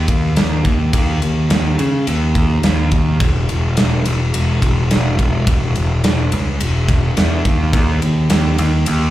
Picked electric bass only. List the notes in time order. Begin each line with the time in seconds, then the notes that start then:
0.08 D#2
0.37 D#2
0.65 D#2
0.94 D#2
1.22 D#2
1.50 D#2
1.79 C#3
2.08 D#2
2.64 D#2
2.92 D#2
3.20 E1
3.50 E1
3.79 E1
4.07 E1
4.34 E1
4.63 E1
4.92 E1
5.19 E1
5.47 E1
5.76 E1
6.04 E1
6.33 C#2
6.61 E1
7.18 E2
7.45 D#2
7.73 D#2
8.02 D#2
8.31 D#2
8.59 D#2
8.87 D#2